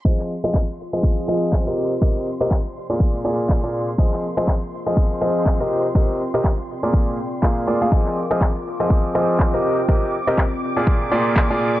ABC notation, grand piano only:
X:1
M:4/4
L:1/16
Q:"Swing 16ths" 1/4=122
K:Fdor
V:1 name="Grand piano"
[F,CFAe]2 z [F,CFAe] z3 [F,CFAe]3 [F,CFAe]3 [C,CGBe]2 z | [C,CGBe]2 z [C,CGBe] z3 [B,,B,FAd]3 [B,,B,FAd]3 [B,,B,FAd]2 z | [F,CFAe]2 z [F,CFAe] z3 [F,CFAe]3 [F,CFAe]3 [C,CGBe]2 z | [C,CGBe]2 z [C,CGBe] z3 [B,,B,FAd]3 z2 [B,,B,FAf]2 [B,FAd] [B,FAf] |
[F,e]2 z [F,CFAe] z3 [F,CFAe]3 [F,CFAe]3 [C,CGBe]2 z | [C,CGBe]2 z [C,CGBe] z3 [B,,B,FAd]3 [B,,B,FAd]3 [B,,B,FAd]2 z |]